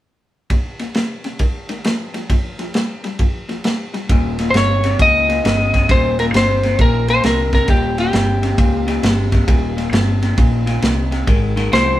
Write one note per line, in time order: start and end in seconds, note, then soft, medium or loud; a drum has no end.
0.50 0.77 D#2 medium
0.50 0.77 A#2 medium
0.50 kick medium
0.50 ride medium
0.79 0.93 D#2 medium
0.79 0.94 A#2 medium
0.79 snare soft
0.79 ride medium
0.94 1.21 D#2 medium
0.94 1.22 C3 medium
0.94 snare medium
0.94 ride medium
1.24 1.38 D#2 medium
1.24 1.39 C3 medium
1.24 snare soft
1.24 ride medium
1.39 1.66 G#2 medium
1.39 1.67 D#3 medium
1.39 kick medium
1.39 ride medium
1.69 1.83 G#2 medium
1.69 1.83 D#3 medium
1.69 snare soft
1.69 ride medium
1.84 2.11 G#2 medium
1.84 2.12 F3 medium
1.84 snare loud
1.84 ride medium
2.14 2.28 G#2 medium
2.14 2.28 F3 medium
2.14 snare soft
2.14 ride medium
2.30 2.56 A#2 medium
2.30 2.56 F3 medium
2.30 kick medium
2.30 snare soft
2.30 ride medium
2.59 2.73 A#2 medium
2.59 2.73 F3 medium
2.59 snare soft
2.59 ride medium
2.74 3.01 A#2 medium
2.74 3.02 G3 medium
2.74 snare medium
2.74 ride medium
3.04 3.18 A#2 medium
3.04 3.18 G3 medium
3.04 snare soft
3.04 ride medium
3.19 3.46 A#2 medium
3.19 3.46 F3 medium
3.19 kick medium
3.19 ride medium
3.49 3.63 A#2 medium
3.49 3.63 F3 medium
3.49 snare soft
3.49 ride soft
3.64 3.91 A#2 medium
3.64 3.91 G3 medium
3.64 snare loud
3.64 ride medium
3.94 4.08 A#2 medium
3.94 4.08 G3 medium
3.94 snare soft
3.94 ride medium
4.09 4.50 D#1 medium
4.09 4.36 D#2 medium
4.09 4.36 A#2 medium
4.09 kick loud
4.09 ride medium
4.39 4.53 D#2 medium
4.39 4.53 A#2 medium
4.39 snare soft
4.39 ride medium
4.50 4.94 G1 medium
4.50 4.55 C5 medium
4.50 ride medium
4.55 4.81 D#2 medium
4.55 4.81 C3 medium
4.55 5.01 C#5 medium
4.55 snare loud
4.84 4.98 D#2 medium
4.84 4.98 C3 medium
4.84 snare soft
4.84 ride medium
4.99 5.39 C#2 medium
4.99 5.26 D#2 medium
4.99 5.26 A#2 medium
4.99 5.93 D#5 medium
4.99 kick loud
4.99 ride medium
5.29 5.43 D#2 medium
5.29 5.43 A#2 medium
5.29 snare soft
5.29 ride medium
5.44 5.85 G1 medium
5.44 5.71 D#2 medium
5.44 5.71 C3 medium
5.44 snare loud
5.44 ride medium
5.74 5.87 D#2 medium
5.74 5.88 C3 medium
5.74 kick medium
5.74 snare soft
5.74 ride medium
5.89 6.29 D#1 medium
5.89 6.16 D#2 medium
5.89 6.16 A#2 medium
5.89 6.19 C5 medium
5.89 kick loud
5.89 snare soft
5.89 ride medium
6.19 6.32 D#2 medium
6.19 6.33 A#2 medium
6.19 6.25 A#4 medium
6.19 snare soft
6.19 ride medium
6.34 6.74 G1 medium
6.34 6.60 D#2 medium
6.34 6.61 C3 medium
6.34 6.81 C5 medium
6.34 snare medium
6.34 ride medium
6.63 6.77 D#2 medium
6.63 6.78 C3 medium
6.63 snare soft
6.63 ride medium
6.79 7.19 A#1 medium
6.79 7.05 D#2 medium
6.79 7.06 A#2 medium
6.79 7.10 A#4 medium
6.79 kick medium
6.79 ride medium
7.08 7.22 D#2 medium
7.08 7.22 A#2 medium
7.08 7.25 C5 medium
7.08 snare soft
7.08 ride medium
7.24 7.64 C2 medium
7.24 7.50 D#2 medium
7.24 7.50 C3 medium
7.24 7.52 A#4 medium
7.24 snare loud
7.24 ride medium
7.53 7.67 D#2 medium
7.53 7.67 C3 medium
7.53 7.68 A#4 medium
7.53 kick medium
7.53 snare soft
7.53 ride medium
7.68 8.08 D#1 medium
7.68 7.95 D#2 medium
7.68 7.95 A#2 medium
7.68 7.99 G4 medium
7.68 kick loud
7.68 ride medium
7.98 8.12 D#2 medium
7.98 8.12 A#2 medium
7.98 9.74 G4 medium
7.98 snare soft
7.98 ride medium
8.13 8.53 G1 medium
8.13 8.39 D#2 medium
8.13 8.40 C3 medium
8.13 snare loud
8.13 ride medium
8.42 8.56 D#2 medium
8.42 8.57 C3 medium
8.42 snare soft
8.42 ride medium
8.57 8.98 C#2 medium
8.57 8.84 D#2 medium
8.57 8.84 A#2 medium
8.57 kick loud
8.57 ride medium
8.87 9.01 D#2 medium
8.87 9.01 A#2 medium
8.87 snare soft
8.87 ride medium
9.03 9.43 G1 medium
9.03 9.29 D#2 medium
9.03 9.29 C3 medium
9.03 snare loud
9.03 ride medium
9.32 9.46 D#2 medium
9.32 9.46 C3 medium
9.32 kick medium
9.32 snare soft
9.32 ride medium
9.47 9.88 D#1 medium
9.47 9.74 D#2 medium
9.47 9.74 A#2 medium
9.47 kick loud
9.47 ride medium
9.77 9.91 D#2 medium
9.77 9.91 A#2 medium
9.77 snare soft
9.77 ride medium
9.93 10.33 G1 medium
9.93 10.19 D#2 medium
9.93 10.19 C3 medium
9.93 snare loud
9.93 ride medium
10.22 10.36 D#2 medium
10.22 10.36 C3 medium
10.22 snare soft
10.22 ride medium
10.37 10.78 A#1 medium
10.37 10.64 D#2 medium
10.37 10.64 A#2 medium
10.37 kick loud
10.37 ride medium
10.66 10.80 D#2 medium
10.66 10.81 A#2 medium
10.66 snare soft
10.66 ride medium
10.82 11.22 C2 medium
10.82 11.08 D#2 medium
10.82 11.09 C3 medium
10.82 snare loud
10.82 ride medium
11.11 11.25 D#2 medium
11.11 11.26 C3 medium
11.11 snare soft
11.11 ride medium
11.27 11.67 G#1 medium
11.27 11.53 G#2 medium
11.27 11.54 D#3 medium
11.27 kick loud
11.27 ride medium
11.56 11.70 G#2 medium
11.56 11.71 D#3 medium
11.56 snare soft
11.56 ride medium
11.72 12.00 C2 medium
11.72 11.98 G#2 medium
11.72 11.98 F3 medium
11.72 12.00 C5 medium
11.72 snare loud
11.72 ride medium